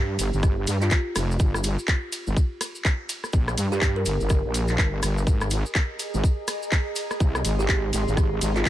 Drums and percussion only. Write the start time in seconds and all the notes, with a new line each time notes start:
0.19 open hi-hat, ride, cabasa
0.33 cabasa
0.43 kick, cross-stick, cabasa
0.67 open hi-hat, ride, cabasa
0.82 clap, cabasa
0.91 kick, clap, cabasa
1.16 cross-stick, open hi-hat, ride, cabasa
1.31 cabasa
1.39 kick, cabasa
1.54 cross-stick, cabasa
1.64 open hi-hat, ride, cabasa
1.78 cabasa
1.88 kick, clap, cabasa
2.12 open hi-hat, ride, cabasa
2.27 cabasa
2.37 kick, cabasa
2.61 cross-stick, open hi-hat, ride, cabasa
2.75 cabasa
2.85 kick, clap, cabasa
3.09 open hi-hat, ride, cabasa
3.24 cross-stick, cabasa
3.33 kick, cabasa
3.48 cross-stick, cabasa
3.58 open hi-hat, ride, cabasa
3.72 cabasa
3.81 kick, clap, cabasa
4.05 open hi-hat, ride, cabasa
4.20 cabasa
4.29 kick, cross-stick, cabasa
4.54 open hi-hat, ride, cabasa
4.68 clap, cabasa
4.78 kick, clap, cabasa
5.03 cross-stick, open hi-hat, ride, cabasa
5.18 cabasa
5.27 kick, cabasa
5.41 cross-stick, cabasa
5.50 open hi-hat, ride, cabasa
5.66 cabasa
5.75 kick, clap, cabasa
5.99 open hi-hat, ride, cabasa
6.14 cabasa
6.24 kick, cabasa
6.48 cross-stick, open hi-hat, ride, cabasa
6.63 cabasa
6.72 kick, clap, cabasa
6.96 open hi-hat, ride, cabasa
7.11 cross-stick, cabasa
7.20 kick, cabasa
7.35 cross-stick, cabasa
7.45 open hi-hat, ride, cabasa
7.60 cabasa
7.69 kick, clap, cabasa
7.93 open hi-hat, ride, cabasa
8.08 cabasa
8.17 kick, cross-stick, cabasa
8.41 open hi-hat, ride, cabasa
8.56 clap, cabasa
8.65 kick, clap, cabasa